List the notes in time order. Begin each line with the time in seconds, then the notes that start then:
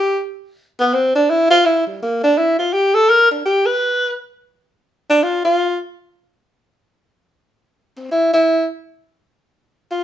Already playing: G4
0.80 B3
0.94 C4
1.15 D4
1.30 E4
1.50 F4
1.66 E4
1.87 G3
2.03 A#3
2.23 D4
2.38 E4
2.59 F4
2.73 G4
2.94 A4
3.09 A#4
3.31 D4
3.45 G4
3.66 B4
5.10 D4
5.23 F4
5.45 F4
7.97 C4
8.12 E4
8.33 E4
9.91 F4